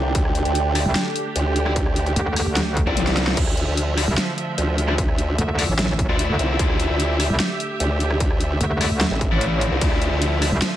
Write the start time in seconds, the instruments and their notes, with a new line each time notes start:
Already playing: wobble bass C2, string section D3 F3 A3 D4, ambient pad D4 A4 G5
0.15 wobble bass D2, string section G4, kick, closed hi-hat
0.25 cross-stick
0.35 closed hi-hat
0.45 wobble bass D2, closed hi-hat
0.55 closed hi-hat
0.75 distorted electric guitar E4 F4 D5, cross-stick, open hi-hat
0.86 wobble bass C2
0.95 snare, closed hi-hat
1.16 closed hi-hat
1.36 wobble bass D2, closed hi-hat
1.56 closed hi-hat
1.66 distorted electric guitar E4 F4 D5, cross-stick
1.76 kick, closed hi-hat
1.86 cross-stick
1.96 closed hi-hat
2.06 closed hi-hat
2.16 wobble bass D2, closed hi-hat
2.36 cross-stick, open hi-hat
2.47 wobble bass D2
2.57 snare, closed hi-hat
2.77 kick, closed hi-hat
2.87 wobble bass C2, distorted electric guitar E4 F4 D5, kick
2.97 closed hi-hat, high tom
3.07 snare, closed hi-hat
3.17 snare, closed hi-hat
3.27 snare
3.37 wobble bass D2, string section D3 F3 A3 E5, kick, closed hi-hat, crash
3.47 cross-stick
3.57 closed hi-hat
3.68 wobble bass D2
3.77 closed hi-hat
3.97 distorted electric guitar E4 F4 D5, cross-stick, open hi-hat
4.08 wobble bass C2
4.18 snare, closed hi-hat
4.38 closed hi-hat
4.58 wobble bass D2, closed hi-hat
4.78 closed hi-hat
4.88 distorted electric guitar E4 F4 D5, cross-stick
4.98 kick, closed hi-hat
5.09 cross-stick
5.18 closed hi-hat
5.38 wobble bass D2, closed hi-hat
5.58 distorted electric guitar E4 F4 D5, cross-stick, open hi-hat
5.69 wobble bass A1
5.79 snare, closed hi-hat
5.99 kick, closed hi-hat
6.09 wobble bass D2, distorted electric guitar E4 F4 D5
6.19 closed hi-hat
6.29 wobble bass D2
6.39 wobble bass C2, closed hi-hat
6.59 wobble bass D2, string section G4, kick, closed hi-hat
6.70 cross-stick
6.80 closed hi-hat
6.90 wobble bass D2
7.00 closed hi-hat
7.19 distorted electric guitar E4 F4 D5, cross-stick, open hi-hat
7.30 wobble bass C2
7.40 snare, closed hi-hat
7.60 closed hi-hat
7.80 wobble bass D2, closed hi-hat
8.00 closed hi-hat
8.11 cross-stick
8.20 kick, closed hi-hat
8.31 cross-stick
8.40 closed hi-hat
8.61 wobble bass D2, closed hi-hat
8.81 distorted electric guitar E4 F4 D5, cross-stick, open hi-hat
8.91 wobble bass D2
9.01 snare, closed hi-hat
9.11 wobble bass A1
9.21 kick, closed hi-hat
9.31 wobble bass A1, distorted electric guitar E4 F4 D5
9.41 closed hi-hat
9.61 closed hi-hat
9.72 wobble bass C2
9.81 wobble bass D2, string section F3, kick, closed hi-hat, ride
9.92 cross-stick
10.02 closed hi-hat
10.12 wobble bass D2
10.22 closed hi-hat, ride
10.41 distorted electric guitar E4 F4 D5, cross-stick, open hi-hat
10.52 wobble bass C2
10.62 snare, closed hi-hat, ride